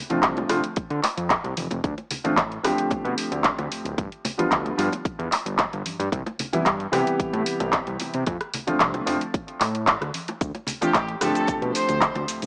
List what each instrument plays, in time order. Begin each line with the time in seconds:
0.10 analog synth bass C2, grand piano D3 F3 A3 C4 F4, closed hi-hat, high bongo, high conga
0.23 analog synth bass C2, kick, clap, closed hi-hat
0.37 closed hi-hat, high bongo
0.49 analog synth bass F1, grand piano D3 F3 A3 C4 F4, cross-stick, open hi-hat
0.64 closed hi-hat
0.76 kick, closed hi-hat, high bongo
0.90 analog synth bass D3, closed hi-hat
1.03 clap, open hi-hat, high bongo
1.17 analog synth bass F2, closed hi-hat
1.30 kick, clap, closed hi-hat
1.44 analog synth bass C2, closed hi-hat, high bongo
1.57 analog synth bass F1, open hi-hat, high conga
1.71 analog synth bass F1, closed hi-hat, high bongo
1.84 analog synth bass D2, kick, closed hi-hat
1.98 closed hi-hat, high bongo
2.11 open hi-hat, low conga
2.24 analog synth bass A1, grand piano D3 F3 A3 C4 F4, closed hi-hat, high bongo, high conga
2.37 analog synth bass A1, kick, clap, closed hi-hat
2.52 closed hi-hat
2.63 analog synth bass D1, grand piano D3 F3 A3 C4 G4, cross-stick, open hi-hat, high bongo
2.78 closed hi-hat
2.91 analog synth bass B2, kick, closed hi-hat, high bongo
3.05 analog synth bass B2, closed hi-hat
3.18 open hi-hat
3.32 analog synth bass D2, closed hi-hat, high bongo
3.44 kick, clap, closed hi-hat
3.58 analog synth bass D2, closed hi-hat, high bongo
3.72 open hi-hat
3.85 analog synth bass D1, closed hi-hat
3.98 analog synth bass G1, kick, closed hi-hat, high bongo
4.12 closed hi-hat
4.25 open hi-hat, high bongo, low conga
4.38 analog synth bass D2, grand piano D3 F3 G3 B3 F4, closed hi-hat, high conga
4.52 analog synth bass D2, kick, clap, closed hi-hat
4.66 closed hi-hat, high bongo
4.77 analog synth bass G2, grand piano D3 F3 G3 B3 F4, open hi-hat
4.92 closed hi-hat, high bongo
5.05 kick, closed hi-hat
5.19 analog synth bass E2, closed hi-hat
5.32 clap, open hi-hat, high bongo
5.46 analog synth bass G1, closed hi-hat
5.59 kick, clap, closed hi-hat, high bongo
5.73 analog synth bass G1, closed hi-hat
5.86 analog synth bass G2, open hi-hat, high conga
5.99 analog synth bass G2, closed hi-hat, high bongo
6.12 analog synth bass C2, kick, closed hi-hat
6.26 closed hi-hat, high bongo
6.39 open hi-hat, low conga
6.53 analog synth bass G2, grand piano C3 E3 G3 B3 E4, closed hi-hat, high conga
6.66 analog synth bass G2, kick, clap, closed hi-hat, high bongo
6.80 closed hi-hat
6.92 grand piano C3 E3 G3 B3 G4, analog synth bass C3, cross-stick, open hi-hat, high bongo
7.07 closed hi-hat
7.19 analog synth bass A2, kick, closed hi-hat
7.33 analog synth bass A2, closed hi-hat, high bongo
7.46 open hi-hat
7.60 analog synth bass C2, closed hi-hat, high bongo
7.73 kick, clap, closed hi-hat
7.87 analog synth bass C2, closed hi-hat
8.00 analog synth bass C3, open hi-hat, high bongo
8.14 analog synth bass C3, closed hi-hat
8.26 analog synth bass F2, kick, closed hi-hat, high bongo
8.41 cross-stick, closed hi-hat
8.54 open hi-hat, low conga
8.67 analog synth bass C2, grand piano D3 F3 A3 C4 F4, closed hi-hat, high bongo, high conga
8.80 analog synth bass C2, kick, clap, closed hi-hat
8.94 closed hi-hat, high bongo
9.06 analog synth bass F1, grand piano D3 F3 A3 C4 F4, open hi-hat
9.21 closed hi-hat
9.34 kick, closed hi-hat, high bongo
9.48 closed hi-hat
9.60 analog synth bass A2, clap, open hi-hat, high bongo
9.75 closed hi-hat
9.87 kick, clap, closed hi-hat
10.01 analog synth bass D2, cross-stick, closed hi-hat, high bongo
10.14 open hi-hat, high conga
10.28 closed hi-hat, high bongo
10.41 analog synth bass D2, kick, closed hi-hat, cabasa
10.55 closed hi-hat, high bongo
10.67 open hi-hat, low conga, cabasa
10.81 analog synth bass A1, grand piano D3 F3 A3 C4 F4, violin section G4, closed hi-hat, high bongo, high conga, cabasa
10.94 analog synth bass A1, violin section G4, kick, clap, closed hi-hat, cabasa
11.09 closed hi-hat
11.21 analog synth bass D1, grand piano D3 F3 A3 C4 G4, violin section A4, cross-stick, open hi-hat, high bongo, cabasa
11.35 violin section A4, closed hi-hat, cabasa
11.47 analog synth bass B2, kick, closed hi-hat, high bongo, cabasa
11.62 analog synth bass B2, closed hi-hat
11.75 violin section C5, open hi-hat, cabasa
11.89 analog synth bass D2, closed hi-hat, high bongo, cabasa
12.01 kick, clap, closed hi-hat, cabasa
12.15 analog synth bass D2, closed hi-hat, high bongo
12.28 open hi-hat, cabasa
12.42 analog synth bass D1, closed hi-hat, cabasa